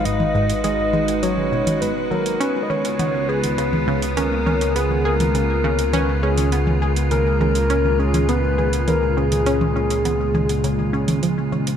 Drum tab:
HH |x--xx--xx--xx--x|x--xx--xx--xx--x|x--xx--xx--xx--x|x--xx--xx--xx--x|
T1 |-o--o-o--o-o--o-|--o-o--o-o--o-o-|-o-o--o-o--o-o--|o-o--o-o--o-o--o|

HH |x--xx--xx--xx--x|
T1 |-o--o-o--o-o--o-|